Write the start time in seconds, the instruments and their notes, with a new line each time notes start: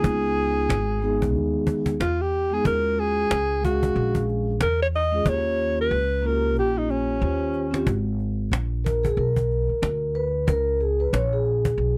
Already playing: alto saxophone G#4
0.02 upright bass C#2, vibraphone G#3 B3 D#4 F4, cajon bass
0.37 cajon slap
0.69 upright bass G#1, cajon slap
1.00 vibraphone G#3 B3 D#4, cajon slap
1.04 vibraphone G#4
1.22 cajon bass
1.35 upright bass D#2
1.67 cajon bass
1.86 cajon bass
2.00 upright bass E2, alto saxophone F4, cajon slap
2.21 alto saxophone G4
2.33 cajon slap
2.50 vibraphone G#3 B3 D#4 G#4, alto saxophone G#4
2.63 upright bass D#2, vibraphone G#3 C#4 F4 F#4, alto saxophone A#4, cajon bass
2.98 alto saxophone G#4, cajon slap
3.31 upright bass C#2, cajon slap
3.61 vibraphone G#3 C#4 G#4 F5, alto saxophone F#4, cajon bass
3.83 cajon bass
3.96 upright bass A#1
4.15 cajon bass
4.29 cajon slap
4.61 upright bass E2, alto saxophone A#4, cajon slap
4.82 alto saxophone C#5
4.93 alto saxophone D#5, cajon slap
5.11 vibraphone G#3 C#4 F4 G#4
5.24 upright bass D#2, vibraphone A#3 C#4 F4 G4, cajon bass
5.29 alto saxophone C#5
5.58 cajon slap
5.81 alto saxophone B4
5.91 upright bass C#2, cajon slap
6.22 vibraphone A#3 C#4 F4 F#4, cajon slap
6.26 alto saxophone A#4
6.32 vibraphone G4
6.56 upright bass A#1, alto saxophone G4, cajon slap
6.78 alto saxophone D#4
6.90 alto saxophone C#4, cajon slap
7.20 upright bass D#2, vibraphone C#4 F4 G4 C5, cajon slap
7.54 cajon slap
7.71 vibraphone C4 C#4 F4 G4, cajon slap
7.87 upright bass G#1, cajon bass
8.20 cajon slap
8.51 upright bass A#1, cajon slap
8.85 vibraphone A#4, cajon bass
9.04 vibraphone G#4, cajon bass
9.17 upright bass B1, vibraphone A#4, cajon slap
9.36 cajon bass
9.52 cajon slap
9.69 muted upright bass stroke
9.82 upright bass D2, cajon slap
10.15 vibraphone B4, cajon slap
10.47 upright bass C#2, vibraphone A#4, cajon bass
10.81 vibraphone G#4, cajon slap
11.00 vibraphone B4
11.13 upright bass A#1, vibraphone C#5, cajon slap
11.33 vibraphone G#4
11.45 cajon slap
11.65 cajon bass
11.77 upright bass B1, cajon slap